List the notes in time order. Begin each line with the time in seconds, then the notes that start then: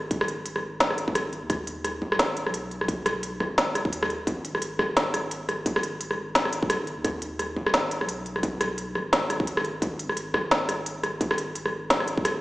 Already playing: G#1
0.11 kick, closed hi-hat
0.21 cross-stick
0.28 closed hi-hat
0.46 closed hi-hat
0.56 cross-stick
0.63 G#1
0.80 snare, closed hi-hat
0.90 cross-stick
0.98 closed hi-hat
1.08 kick
1.15 cross-stick, closed hi-hat
1.33 closed hi-hat
1.42 D#2
1.50 kick, cross-stick, closed hi-hat
1.67 closed hi-hat
1.84 cross-stick, closed hi-hat
2.02 G#1, kick
2.12 cross-stick
2.19 snare, closed hi-hat
2.37 closed hi-hat
2.46 B1, cross-stick
2.54 closed hi-hat
2.71 closed hi-hat
2.81 cross-stick
2.88 kick, closed hi-hat
3.06 cross-stick, closed hi-hat
3.23 closed hi-hat
3.40 G#1, kick, cross-stick
3.58 snare, closed hi-hat
3.75 D#1, cross-stick, closed hi-hat
3.85 D#2, kick
3.93 closed hi-hat
4.03 cross-stick
4.10 closed hi-hat
4.27 G#1, kick, closed hi-hat
4.45 closed hi-hat
4.55 cross-stick
4.62 closed hi-hat
4.79 G#1, kick, cross-stick
4.97 snare, closed hi-hat
5.14 cross-stick, closed hi-hat
5.31 closed hi-hat
5.49 cross-stick, closed hi-hat
5.66 kick, closed hi-hat
5.76 cross-stick
5.83 closed hi-hat
6.01 closed hi-hat
6.11 cross-stick
6.18 G#1
6.35 snare, closed hi-hat
6.45 cross-stick
6.53 closed hi-hat
6.63 kick
6.70 cross-stick, closed hi-hat
6.87 closed hi-hat
6.97 D#2
7.05 kick, cross-stick, closed hi-hat
7.22 closed hi-hat
7.39 cross-stick, closed hi-hat
7.56 G#1, kick
7.67 cross-stick
7.74 snare, closed hi-hat
7.91 closed hi-hat
8.01 B1, cross-stick
8.09 closed hi-hat
8.26 closed hi-hat
8.36 cross-stick
8.43 kick, closed hi-hat
8.61 cross-stick, closed hi-hat
8.78 closed hi-hat
8.95 G#1, cross-stick
9.13 G#1, snare, closed hi-hat
9.30 cross-stick, closed hi-hat
9.40 kick
9.47 closed hi-hat
9.57 cross-stick
9.65 closed hi-hat
9.82 G#1, kick, closed hi-hat
9.99 closed hi-hat
10.09 cross-stick
10.17 closed hi-hat
10.34 G#1, kick, cross-stick
10.51 snare, closed hi-hat
10.69 cross-stick, closed hi-hat
10.86 closed hi-hat
11.04 cross-stick, closed hi-hat
11.21 kick, closed hi-hat
11.31 cross-stick
11.38 closed hi-hat
11.55 closed hi-hat
11.66 cross-stick
11.73 G#1
11.90 snare, closed hi-hat
12.00 cross-stick
12.08 closed hi-hat
12.18 kick
12.25 cross-stick, closed hi-hat